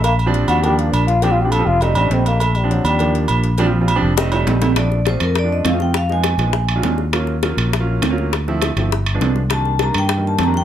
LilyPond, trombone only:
\new Staff \with { instrumentName = "Trombone" } { \time 4/4 \key bes \major \tempo 4 = 203 bes8 r4 ges'8 g'8 bes8 d'8 f'8 | \tuplet 3/2 { g'8 f'8 g'8 } a'8 f'8 ees'8 d'8 c'8 bes8 | a8 g8 ges8 g4 r4. | r1 |
r1 | r1 | r1 | r1 |
r1 | }